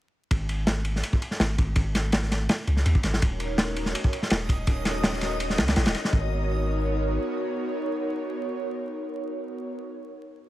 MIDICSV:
0, 0, Header, 1, 5, 480
1, 0, Start_track
1, 0, Key_signature, 5, "minor"
1, 0, Tempo, 363636
1, 411, Time_signature, 4, 2, 24, 8
1, 13848, End_track
2, 0, Start_track
2, 0, Title_t, "Synth texture"
2, 0, Program_c, 0, 99
2, 4250, Note_on_c, 0, 75, 89
2, 4250, Note_on_c, 0, 87, 89
2, 8100, Note_off_c, 0, 75, 0
2, 8100, Note_off_c, 0, 87, 0
2, 13848, End_track
3, 0, Start_track
3, 0, Title_t, "Analog synth pad"
3, 0, Program_c, 1, 89
3, 8086, Note_on_c, 1, 66, 89
3, 8087, Note_on_c, 1, 70, 86
3, 8089, Note_on_c, 1, 59, 96
3, 8089, Note_on_c, 1, 63, 89
3, 8089, Note_on_c, 1, 73, 108
3, 12931, Note_off_c, 1, 66, 0
3, 12932, Note_off_c, 1, 70, 0
3, 12933, Note_off_c, 1, 59, 0
3, 12933, Note_off_c, 1, 63, 0
3, 12933, Note_off_c, 1, 73, 0
3, 13848, End_track
4, 0, Start_track
4, 0, Title_t, "808-style bass"
4, 0, Program_c, 2, 38
4, 407, Note_on_c, 2, 32, 98
4, 1350, Note_off_c, 2, 32, 0
4, 1847, Note_on_c, 2, 32, 84
4, 2066, Note_off_c, 2, 32, 0
4, 2091, Note_on_c, 2, 32, 105
4, 2308, Note_off_c, 2, 32, 0
4, 2324, Note_on_c, 2, 32, 100
4, 3269, Note_off_c, 2, 32, 0
4, 3530, Note_on_c, 2, 37, 84
4, 3747, Note_off_c, 2, 37, 0
4, 3771, Note_on_c, 2, 39, 95
4, 3885, Note_off_c, 2, 39, 0
4, 4011, Note_on_c, 2, 32, 97
4, 4228, Note_off_c, 2, 32, 0
4, 4258, Note_on_c, 2, 27, 100
4, 5196, Note_off_c, 2, 27, 0
4, 5693, Note_on_c, 2, 27, 85
4, 5909, Note_off_c, 2, 27, 0
4, 5927, Note_on_c, 2, 27, 106
4, 6146, Note_off_c, 2, 27, 0
4, 6169, Note_on_c, 2, 27, 102
4, 7370, Note_on_c, 2, 37, 105
4, 7390, Note_off_c, 2, 27, 0
4, 7588, Note_off_c, 2, 37, 0
4, 7611, Note_on_c, 2, 34, 107
4, 7725, Note_off_c, 2, 34, 0
4, 7739, Note_on_c, 2, 27, 92
4, 7839, Note_off_c, 2, 27, 0
4, 8090, Note_on_c, 2, 32, 97
4, 9477, Note_off_c, 2, 32, 0
4, 13848, End_track
5, 0, Start_track
5, 0, Title_t, "Drums"
5, 408, Note_on_c, 9, 36, 109
5, 408, Note_on_c, 9, 51, 91
5, 540, Note_off_c, 9, 36, 0
5, 540, Note_off_c, 9, 51, 0
5, 646, Note_on_c, 9, 51, 73
5, 778, Note_off_c, 9, 51, 0
5, 882, Note_on_c, 9, 38, 117
5, 882, Note_on_c, 9, 51, 81
5, 1014, Note_off_c, 9, 38, 0
5, 1014, Note_off_c, 9, 51, 0
5, 1118, Note_on_c, 9, 51, 71
5, 1250, Note_off_c, 9, 51, 0
5, 1266, Note_on_c, 9, 38, 39
5, 1365, Note_on_c, 9, 51, 85
5, 1398, Note_off_c, 9, 38, 0
5, 1492, Note_on_c, 9, 36, 99
5, 1497, Note_off_c, 9, 51, 0
5, 1611, Note_on_c, 9, 51, 69
5, 1624, Note_off_c, 9, 36, 0
5, 1731, Note_on_c, 9, 38, 36
5, 1743, Note_off_c, 9, 51, 0
5, 1848, Note_off_c, 9, 38, 0
5, 1848, Note_on_c, 9, 38, 127
5, 1858, Note_on_c, 9, 51, 90
5, 1980, Note_off_c, 9, 38, 0
5, 1990, Note_off_c, 9, 51, 0
5, 2090, Note_on_c, 9, 51, 65
5, 2091, Note_on_c, 9, 36, 103
5, 2222, Note_off_c, 9, 51, 0
5, 2223, Note_off_c, 9, 36, 0
5, 2318, Note_on_c, 9, 51, 83
5, 2323, Note_on_c, 9, 36, 114
5, 2450, Note_off_c, 9, 51, 0
5, 2455, Note_off_c, 9, 36, 0
5, 2571, Note_on_c, 9, 38, 58
5, 2572, Note_on_c, 9, 51, 76
5, 2703, Note_off_c, 9, 38, 0
5, 2704, Note_off_c, 9, 51, 0
5, 2801, Note_on_c, 9, 51, 83
5, 2810, Note_on_c, 9, 38, 112
5, 2933, Note_off_c, 9, 51, 0
5, 2936, Note_off_c, 9, 38, 0
5, 2936, Note_on_c, 9, 38, 45
5, 3053, Note_off_c, 9, 38, 0
5, 3053, Note_on_c, 9, 38, 57
5, 3057, Note_on_c, 9, 51, 68
5, 3185, Note_off_c, 9, 38, 0
5, 3189, Note_off_c, 9, 51, 0
5, 3288, Note_on_c, 9, 51, 89
5, 3292, Note_on_c, 9, 38, 109
5, 3420, Note_off_c, 9, 51, 0
5, 3424, Note_off_c, 9, 38, 0
5, 3529, Note_on_c, 9, 51, 59
5, 3652, Note_on_c, 9, 38, 39
5, 3661, Note_off_c, 9, 51, 0
5, 3771, Note_on_c, 9, 51, 75
5, 3784, Note_off_c, 9, 38, 0
5, 3895, Note_on_c, 9, 36, 84
5, 3903, Note_off_c, 9, 51, 0
5, 4005, Note_on_c, 9, 51, 74
5, 4011, Note_on_c, 9, 38, 52
5, 4027, Note_off_c, 9, 36, 0
5, 4137, Note_off_c, 9, 51, 0
5, 4141, Note_off_c, 9, 38, 0
5, 4141, Note_on_c, 9, 38, 58
5, 4252, Note_on_c, 9, 51, 83
5, 4257, Note_on_c, 9, 36, 110
5, 4273, Note_off_c, 9, 38, 0
5, 4384, Note_off_c, 9, 51, 0
5, 4389, Note_off_c, 9, 36, 0
5, 4487, Note_on_c, 9, 51, 66
5, 4619, Note_off_c, 9, 51, 0
5, 4725, Note_on_c, 9, 38, 118
5, 4734, Note_on_c, 9, 51, 94
5, 4857, Note_off_c, 9, 38, 0
5, 4866, Note_off_c, 9, 51, 0
5, 4968, Note_on_c, 9, 51, 74
5, 5090, Note_on_c, 9, 38, 46
5, 5100, Note_off_c, 9, 51, 0
5, 5213, Note_on_c, 9, 51, 90
5, 5222, Note_off_c, 9, 38, 0
5, 5335, Note_on_c, 9, 36, 103
5, 5345, Note_off_c, 9, 51, 0
5, 5450, Note_on_c, 9, 51, 68
5, 5467, Note_off_c, 9, 36, 0
5, 5576, Note_on_c, 9, 38, 43
5, 5582, Note_off_c, 9, 51, 0
5, 5680, Note_on_c, 9, 51, 93
5, 5695, Note_off_c, 9, 38, 0
5, 5695, Note_on_c, 9, 38, 126
5, 5812, Note_off_c, 9, 51, 0
5, 5827, Note_off_c, 9, 38, 0
5, 5928, Note_on_c, 9, 36, 98
5, 5935, Note_on_c, 9, 51, 69
5, 6060, Note_off_c, 9, 36, 0
5, 6067, Note_off_c, 9, 51, 0
5, 6165, Note_on_c, 9, 51, 80
5, 6170, Note_on_c, 9, 36, 103
5, 6297, Note_off_c, 9, 51, 0
5, 6302, Note_off_c, 9, 36, 0
5, 6406, Note_on_c, 9, 38, 59
5, 6406, Note_on_c, 9, 51, 69
5, 6538, Note_off_c, 9, 38, 0
5, 6538, Note_off_c, 9, 51, 0
5, 6647, Note_on_c, 9, 38, 106
5, 6653, Note_on_c, 9, 51, 88
5, 6770, Note_off_c, 9, 38, 0
5, 6770, Note_on_c, 9, 38, 49
5, 6785, Note_off_c, 9, 51, 0
5, 6881, Note_on_c, 9, 51, 73
5, 6894, Note_off_c, 9, 38, 0
5, 6894, Note_on_c, 9, 38, 52
5, 7013, Note_off_c, 9, 51, 0
5, 7026, Note_off_c, 9, 38, 0
5, 7128, Note_on_c, 9, 51, 84
5, 7257, Note_on_c, 9, 38, 41
5, 7260, Note_off_c, 9, 51, 0
5, 7366, Note_on_c, 9, 51, 80
5, 7370, Note_off_c, 9, 38, 0
5, 7370, Note_on_c, 9, 38, 109
5, 7496, Note_off_c, 9, 51, 0
5, 7496, Note_on_c, 9, 51, 79
5, 7502, Note_off_c, 9, 38, 0
5, 7503, Note_on_c, 9, 38, 105
5, 7602, Note_off_c, 9, 51, 0
5, 7602, Note_on_c, 9, 51, 77
5, 7608, Note_off_c, 9, 38, 0
5, 7608, Note_on_c, 9, 38, 113
5, 7730, Note_off_c, 9, 51, 0
5, 7730, Note_on_c, 9, 51, 78
5, 7740, Note_off_c, 9, 38, 0
5, 7740, Note_on_c, 9, 38, 102
5, 7848, Note_off_c, 9, 51, 0
5, 7848, Note_on_c, 9, 51, 67
5, 7852, Note_off_c, 9, 38, 0
5, 7852, Note_on_c, 9, 38, 52
5, 7980, Note_off_c, 9, 51, 0
5, 7981, Note_off_c, 9, 38, 0
5, 7981, Note_on_c, 9, 38, 62
5, 8090, Note_on_c, 9, 36, 102
5, 8113, Note_off_c, 9, 38, 0
5, 8222, Note_off_c, 9, 36, 0
5, 13848, End_track
0, 0, End_of_file